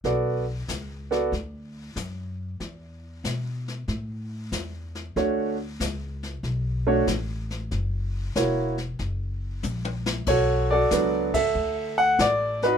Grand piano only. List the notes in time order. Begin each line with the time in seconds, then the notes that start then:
0.05 B3 F#4 A4 D5
1.11 B3 F#4 A4 D5
5.17 A3 D4 F#4 C#5
6.87 A3 D4 F#4 C#5
8.36 A#3 E4 F#4 C#5
10.28 F#4 A4 C#5
10.71 F#4 A4 D5
10.92 F#3 B3 D4 A4
11.34 A4 E5
11.98 F#5
12.21 D5
12.63 D#4 F#4 B4